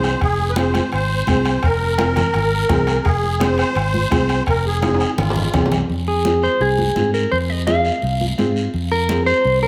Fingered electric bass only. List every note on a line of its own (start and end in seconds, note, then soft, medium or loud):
0.00 0.14 C2 medium
0.21 0.78 F1 loud
0.93 1.21 G#1 medium
1.28 1.56 C2 medium
1.63 2.20 F1 medium
2.35 2.63 G#1 medium
2.70 2.98 C2 medium
3.06 3.62 F1 medium
3.76 4.04 G#1 loud
4.12 4.40 C2 medium
4.47 5.04 F1 medium
5.18 5.47 G#1 loud
5.54 5.82 C2 medium
5.90 6.46 F2 medium
6.60 6.89 C2 loud
6.97 7.25 G#2 medium
7.32 7.89 F2 medium
8.03 8.31 C2 medium
8.38 8.67 G#2 medium
8.74 9.31 F2 medium
9.45 9.68 C2 loud